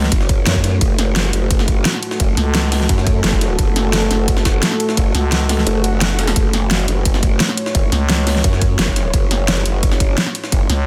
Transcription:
Already playing: fm bass C#2, analog synth pad A3 F#4 C#5
0.03 snare
0.12 wobble bass F#1, kick, closed hi-hat, ride
0.21 snare
0.29 kick, closed hi-hat, ride
0.47 wobble bass F#2, snare, closed hi-hat, ride
0.55 kick, ride
0.64 snare, closed hi-hat, ride
0.81 wobble bass F#1, analog synth pad A4, kick, closed hi-hat, ride
0.99 snare, closed hi-hat, ride
1.16 snare, closed hi-hat, ride
1.25 ride
1.33 wobble bass F#1, closed hi-hat, ride
1.51 kick, closed hi-hat, ride
1.59 snare
1.68 kick, closed hi-hat, ride
1.85 snare, closed hi-hat, ride
1.94 snare
2.03 closed hi-hat, ride
2.11 snare
2.20 wobble bass F#1, kick, closed hi-hat, ride
2.37 fm bass C#2, snare, closed hi-hat, ride
2.55 snare, closed hi-hat, ride
2.72 snare, closed hi-hat, open hi-hat
2.81 snare
2.89 wobble bass F#2, kick, closed hi-hat, ride
2.98 snare
3.07 kick, closed hi-hat, ride
3.24 wobble bass F#1, snare, closed hi-hat, ride
3.33 kick, snare
3.41 snare, closed hi-hat, ride
3.59 wobble bass F#1, kick, closed hi-hat, ride
3.76 snare, closed hi-hat, ride
3.93 snare, closed hi-hat, ride
4.02 ride
4.11 wobble bass F#1, snare, closed hi-hat, ride
4.28 kick, closed hi-hat, ride
4.37 snare
4.45 kick, snare, closed hi-hat, ride
4.63 snare, closed hi-hat, ride
4.71 snare
4.80 closed hi-hat, ride
4.89 snare
4.97 wobble bass F#1, kick, closed hi-hat, ride
5.15 fm bass C#2, snare, closed hi-hat, ride
5.32 snare, closed hi-hat, ride
5.49 snare, closed hi-hat, open hi-hat
5.58 snare
5.67 wobble bass F#1, closed hi-hat, ride, swell
5.84 closed hi-hat, ride
6.01 snare, closed hi-hat, ride
6.10 ride
6.15 wobble bass F1, closed hi-hat
6.19 snare, ride
6.27 snare, ride
6.36 wobble bass F#1, analog synth pad C#5, kick, closed hi-hat, ride
6.53 snare, closed hi-hat, ride
6.71 snare, closed hi-hat, ride
6.80 ride
6.88 wobble bass F#1, closed hi-hat, ride
7.05 kick, closed hi-hat, ride
7.14 snare
7.23 kick, closed hi-hat, ride
7.40 snare, closed hi-hat, ride
7.49 snare
7.57 closed hi-hat, ride
7.66 snare
7.75 wobble bass F#1, kick, closed hi-hat, ride
7.92 fm bass C#2, snare, closed hi-hat, ride
8.09 snare, closed hi-hat, ride
8.27 snare, closed hi-hat, open hi-hat
8.36 snare
8.44 wobble bass F#2, kick, closed hi-hat, ride
8.53 snare
8.62 kick, closed hi-hat, ride
8.79 wobble bass F#1, snare, closed hi-hat, ride
8.88 kick, snare
8.96 snare, closed hi-hat, ride
9.14 wobble bass F#1, kick, closed hi-hat, ride
9.31 snare, closed hi-hat, ride
9.48 snare, closed hi-hat, ride
9.57 ride
9.66 wobble bass F#1, closed hi-hat, ride
9.83 kick, closed hi-hat, ride
9.92 snare
10.00 kick, closed hi-hat, ride
10.18 snare, closed hi-hat, ride
10.26 snare
10.35 closed hi-hat, ride
10.44 snare
10.52 wobble bass F#1, kick, closed hi-hat, ride
10.70 fm bass C#2, snare, closed hi-hat, ride

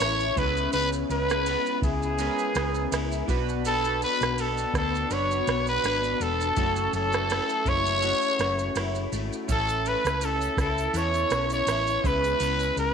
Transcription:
Already playing: clean electric guitar A2 E3 A3 C#4, synth keys B3 C#4 E4 A4, trumpet C#5
0.00 fingered electric bass A1, clean electric guitar E4, cross-stick, ride, shaker
0.20 shaker
0.36 fingered electric bass C#2, clean electric guitar C#3, synth keys G#3 B3 C#4 E4 B4, trumpet B4, kick, ride, shaker
0.57 shaker
0.73 fingered electric bass C#2, clean electric guitar C#3, trumpet B4, ride, shaker
0.93 shaker
1.10 fingered electric bass C#2, clean electric guitar G#3, trumpet B4, ride, shaker
1.30 cross-stick, shaker
1.46 clean electric guitar B3, ride, shaker
1.66 shaker
1.82 fingered electric bass C#2, clean electric guitar E4, trumpet G#4, kick, ride, shaker
2.03 shaker
2.18 synth keys G#3 B3 C#4 E4 A#4, clean electric guitar G#3, ride, shaker
2.27 synth keys B4
2.39 shaker
2.55 fingered electric bass C#2, clean electric guitar B3, cross-stick, ride, shaker
2.75 shaker
2.92 fingered electric bass C#2, clean electric guitar E4, cross-stick, ride, shaker
3.12 shaker
3.28 fingered electric bass B1, clean electric guitar B2, synth keys D4 F#4 B4, kick, ride, shaker
3.49 shaker
3.65 clean electric guitar B2, trumpet A4, ride, shaker
3.85 shaker
4.01 clean electric guitar F#3, trumpet B4, ride, shaker
4.21 fingered electric bass B1, cross-stick, shaker
4.38 clean electric guitar B3, trumpet A4, ride, shaker
4.58 shaker
4.74 fingered electric bass D2, clean electric guitar D4, trumpet A4, kick, cross-stick, ride, shaker
4.95 shaker
5.10 fingered electric bass F#1, clean electric guitar F#3, synth keys D4 F#4 B4, trumpet C#5, ride, shaker
5.31 shaker
5.47 fingered electric bass B1, clean electric guitar B3, cross-stick, ride, shaker
5.67 trumpet B4, shaker
5.83 fingered electric bass G#1, clean electric guitar D4, cross-stick, ride, shaker
6.04 shaker
6.20 fingered electric bass E1, clean electric guitar B3, trumpet A4, ride, shaker
6.41 shaker
6.56 fingered electric bass F#1, clean electric guitar F#2, synth keys A3 C#4 E4 F#4 C#5, kick, ride, shaker
6.76 shaker
6.93 fingered electric bass F#1, clean electric guitar E3, trumpet A4, ride, shaker
7.13 cross-stick, shaker
7.30 clean electric guitar A3, cross-stick, ride, shaker
7.49 shaker
7.65 fingered electric bass F#1, clean electric guitar E4, trumpet C#5, kick, ride, shaker
7.86 shaker
8.02 clean electric guitar C#3, synth keys A3 C#4 E4 F#4 C#5, ride, shaker
8.22 shaker
8.39 fingered electric bass F#1, clean electric guitar A3, cross-stick, ride, shaker
8.59 shaker
8.75 fingered electric bass F#1, clean electric guitar E4, cross-stick, ride, shaker
8.95 shaker
9.12 fingered electric bass G#1, clean electric guitar A3, ride, shaker
9.33 shaker
9.48 fingered electric bass A1, clean electric guitar A2, synth keys C#4 E4 A4, trumpet A4, kick, ride, shaker
9.69 shaker
9.86 clean electric guitar A3, trumpet B4, ride, shaker
10.05 fingered electric bass C#2, cross-stick, shaker
10.21 clean electric guitar C#4, trumpet A4, ride, shaker
10.41 shaker
10.57 fingered electric bass C#2, clean electric guitar E4, trumpet A4, kick, cross-stick, ride, shaker
10.78 shaker
10.94 fingered electric bass E2, synth keys B3 E4, ride, shaker
10.96 clean electric guitar E3, synth keys A4, trumpet C#5, shaker
11.00 synth keys C#4
11.14 shaker
11.16 shaker
11.30 fingered electric bass B1, clean electric guitar C#4, cross-stick, ride, shaker
11.32 shaker
11.50 shaker
11.52 trumpet C#5, shaker
11.67 fingered electric bass A1, clean electric guitar E4, cross-stick, ride, shaker
11.87 shaker
11.90 shaker
12.03 fingered electric bass C#2, clean electric guitar C#3, synth keys G#3 B3 C#4 E4 B4, trumpet B4, kick, ride, shaker
12.24 shaker
12.26 shaker
12.40 fingered electric bass C#2, clean electric guitar C#3, ride, shaker
12.43 shaker
12.60 shaker
12.62 shaker
12.77 fingered electric bass C#2, clean electric guitar G#3, trumpet B4, ride, shaker

